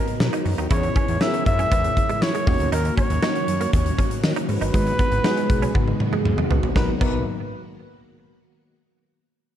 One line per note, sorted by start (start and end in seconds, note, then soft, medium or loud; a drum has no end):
0.00 0.67 D#3 medium
0.00 0.69 F#3 medium
0.00 0.70 B3 medium
0.00 2.43 B3 medium
0.00 0.72 D#4 medium
0.00 0.67 F#4 medium
0.00 0.73 F#4 medium
0.00 0.40 A#4 medium
0.00 0.73 A#4 medium
0.00 0.73 D#5 medium
0.00 0.73 A#5 medium
0.08 closed hi-hat soft
0.20 0.30 B2 loud
0.20 snare loud
0.20 tambourine medium
0.33 0.42 D#4 medium
0.33 closed hi-hat medium
0.45 0.55 F#2 medium
0.45 muted clean electric guitar stroke soft
0.45 open hi-hat medium
0.58 0.68 D#2 medium
0.58 0.67 D#4 medium
0.58 closed hi-hat medium
0.70 0.90 E2 loud
0.70 2.46 C#3 medium
0.70 2.45 E3 medium
0.70 2.46 G#3 medium
0.70 1.10 B3 medium
0.70 1.10 C#4 medium
0.70 2.45 E4 medium
0.70 1.10 E4 medium
0.70 0.80 E4 medium
0.70 1.10 G#4 medium
0.70 1.11 C#5 medium
0.70 1.23 C#5 loud
0.70 kick loud
0.70 closed hi-hat medium
0.83 muted clean electric guitar stroke soft
0.83 closed hi-hat soft
0.96 1.05 C#4 medium
0.96 kick loud
0.96 closed hi-hat medium
1.08 1.18 E2 loud
1.08 closed hi-hat medium
1.20 2.00 B3 medium
1.20 2.00 C#4 medium
1.20 1.30 D#4 medium
1.20 2.00 E4 medium
1.20 2.00 G#4 medium
1.20 2.01 A#4 medium
1.20 1.46 E5 loud
1.20 snare loud
1.20 tambourine medium
1.34 muted clean electric guitar stroke soft
1.34 closed hi-hat medium
1.46 1.65 F#2 loud
1.46 2.24 E5 loud
1.46 kick medium
1.46 closed hi-hat medium
1.59 1.68 C#4 medium
1.59 closed hi-hat medium
1.72 1.91 E2 loud
1.72 1.81 B3 medium
1.72 kick loud
1.72 closed hi-hat medium
1.84 muted clean electric guitar stroke soft
1.84 closed hi-hat medium
1.97 kick medium
1.97 closed hi-hat medium
2.09 2.19 G#3 medium
2.09 closed hi-hat medium
2.22 2.31 E3 loud
2.22 2.73 C#5 loud
2.22 muted clean electric guitar stroke soft
2.22 snare loud
2.22 tambourine medium
2.35 2.44 G#3 medium
2.35 closed hi-hat medium
2.46 2.57 D#2 loud
2.46 6.72 D#3 medium
2.46 6.72 F#3 medium
2.46 3.07 A#3 medium
2.46 2.56 A#3 medium
2.46 4.72 A#3 medium
2.46 3.07 C#4 medium
2.46 4.72 C#4 medium
2.46 3.08 D#4 medium
2.46 6.72 F#4 medium
2.46 3.08 F#4 medium
2.46 3.08 C#5 medium
2.46 kick loud
2.46 open hi-hat medium
2.60 2.69 D2 loud
2.60 closed hi-hat medium
2.72 2.91 D#2 loud
2.72 2.82 D#4 medium
2.72 2.96 A#4 medium
2.72 closed hi-hat loud
2.85 muted clean electric guitar stroke soft
2.85 closed hi-hat soft
2.97 3.07 C#4 medium
2.97 3.69 C#5 loud
2.97 kick loud
2.97 closed hi-hat medium
3.10 3.20 D#2 loud
3.10 closed hi-hat medium
3.22 4.02 A#3 medium
3.22 4.02 C#4 medium
3.22 4.02 D#4 medium
3.22 3.32 D#4 loud
3.22 4.02 F#4 medium
3.22 4.02 C#5 medium
3.22 snare loud
3.22 tambourine medium
3.35 muted clean electric guitar stroke soft
3.35 closed hi-hat soft
3.48 3.67 F#2 medium
3.48 closed hi-hat medium
3.61 3.70 A#3 medium
3.61 closed hi-hat medium
3.73 3.92 D#2 loud
3.73 4.20 C#5 medium
3.73 kick loud
3.73 closed hi-hat medium
3.86 closed hi-hat medium
3.98 4.08 C#4 medium
3.98 kick medium
3.98 closed hi-hat medium
4.11 closed hi-hat medium
4.23 4.33 D#3 loud
4.23 snare loud
4.23 tambourine medium
4.36 4.46 D#4 medium
4.36 closed hi-hat medium
4.49 4.58 G#2 medium
4.49 6.22 B4 loud
4.49 muted clean electric guitar stroke soft
4.49 open hi-hat medium
4.61 4.71 G1 loud
4.61 4.71 D#4 medium
4.61 closed hi-hat medium
4.73 4.93 G#1 loud
4.73 5.13 G#3 medium
4.73 6.74 G#3 medium
4.73 4.83 G#3 medium
4.73 5.13 B3 medium
4.73 6.74 B3 medium
4.73 5.13 D#4 medium
4.73 5.14 F#4 medium
4.73 5.14 B4 medium
4.73 kick loud
4.73 closed hi-hat medium
4.87 muted clean electric guitar stroke soft
4.87 closed hi-hat medium
4.99 5.08 B3 medium
4.99 kick loud
4.99 closed hi-hat medium
5.12 5.21 G#1 loud
5.12 closed hi-hat soft
5.24 6.03 G#3 medium
5.24 6.03 B3 medium
5.24 6.03 D#4 medium
5.24 5.34 D#4 medium
5.24 6.04 F#4 medium
5.24 6.04 G#4 loud
5.24 snare loud
5.24 tambourine medium
5.37 muted clean electric guitar stroke soft
5.37 closed hi-hat medium
5.50 5.69 B1 medium
5.50 kick medium
5.50 closed hi-hat medium
5.62 5.72 C#4 medium
5.62 closed hi-hat medium
5.75 5.94 G#1 loud
5.75 5.84 B3 medium
5.75 kick loud
5.75 high tom medium
5.88 muted clean electric guitar stroke soft
5.88 high tom medium
6.00 mid tom medium
6.13 6.22 G#3 medium
6.13 mid tom medium
6.25 6.35 G#2 loud
6.25 muted clean electric guitar stroke soft
6.25 mid tom medium
6.38 6.47 G#3 medium
6.38 mid tom medium
6.50 6.60 C#2 medium
6.50 6.60 B3 medium
6.50 floor tom loud
6.63 6.73 A#1 medium
6.63 floor tom loud
6.76 6.90 B1 loud
6.76 6.99 D#3 medium
6.76 6.90 F#3 medium
6.76 6.99 F#3 medium
6.76 7.00 A#3 medium
6.76 6.90 B3 medium
6.76 6.85 B3 medium
6.76 7.00 B3 medium
6.76 6.90 D#4 medium
6.76 6.99 F#4 medium
6.76 6.90 A#4 medium
6.76 6.90 B4 medium
6.76 kick loud
6.76 snare medium
7.01 7.24 B1 loud
7.01 7.24 F#3 medium
7.01 7.24 B3 medium
7.01 7.16 B3 medium
7.01 7.24 D#4 medium
7.01 7.24 A#4 medium
7.01 7.25 B4 medium
7.01 kick loud
7.01 crash medium